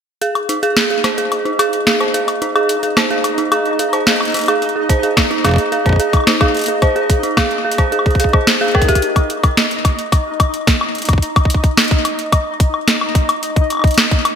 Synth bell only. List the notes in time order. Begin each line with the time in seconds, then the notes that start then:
0.22 G#4
0.49 D#4
0.63 G#4
0.90 G#4
1.04 C5
1.18 G#4
1.45 D#4
1.59 G#4
1.87 G#4
2.00 C5
2.14 G#4
2.42 D#4
2.55 G#4
2.83 G#4
2.97 C5
3.11 G#4
3.38 D#4
3.52 G#4
3.79 G#4
3.93 C5
4.07 G#4
4.34 D#4
4.48 G#4
4.76 G#4
4.89 C5
5.03 G#4
5.31 D#4
5.44 G#4
5.72 G#4
5.86 C5
6.00 G#4
6.27 D#4
6.41 G#4
6.68 G#4
6.82 C5
6.96 G#4
7.23 D#4
7.37 G#4
7.65 G#4
7.78 C5
7.92 G#4
8.20 G#4
8.33 C5
8.61 G#4
8.75 A#4
8.88 G4